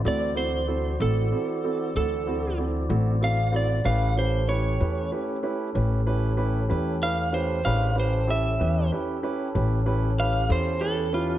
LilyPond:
<<
  \new Staff \with { instrumentName = "Electric slide guitar" } { \time 12/8 \key a \dorian \tempo 4. = 63 d''8 c''4 a'4. a'4 r4 f''8 d''8 | f''8 c''8 cis''4 r2. f''8 c''8 | f''8 c''8 e''4 r2 f''8 c''8 a'8 f'8 | }
  \new Staff \with { instrumentName = "Tonewheel organ" } { \time 12/8 \key a \dorian <e c' fis' d''>1. | <a cis' g' a'>1. | <d' gis' bes' c''>8 <cis' g' a'>1~ <cis' g' a'>4. | }
  \new Staff \with { instrumentName = "Grand piano" } { \time 12/8 \key a \dorian <c' e' fis' a'>8 <c' e' fis' a'>8 <c' e' fis' a'>8 <c' e' fis' a'>8 <c' e' fis' a'>8 <c' e' fis' a'>8 <c' e' fis' a'>8 <c' e' fis' a'>8 <c' e' fis' a'>8 <c' e' fis' a'>8 <c' e' fis' a'>8 <c' e' fis' a'>8 | <cis' e' g' b'>8 <cis' e' g' b'>8 <cis' e' g' b'>8 <cis' e' g' b'>8 <cis' e' g' b'>8 <cis' e' g' b'>8 <cis' e' g' b'>8 <cis' e' g' b'>8 <cis' e' g' b'>8 <cis' e' g' b'>8 <cis' e' g' b'>8 <cis' e' g' b'>8 | <cis' e' g' b'>8 <cis' e' g' b'>8 <cis' e' g' a'>8 <cis' e' g' b'>8 <cis' e' g' b'>8 <cis' e' g' b'>8 <cis' e' g' b'>8 <cis' e' g' b'>8 <cis' e' g' b'>8 <cis' e' g' a'>8 <cis' e' g' b'>8 <cis' e' g' b'>8 | }
  \new Staff \with { instrumentName = "Upright bass" } { \clef bass \time 12/8 \key a \dorian d,4. a,,8 r4 d,4. a,,4. | a,,4. e,8 r4 a,,4. e,4. | a,,4. e,8 r4 a,,4. e,4. | }
>>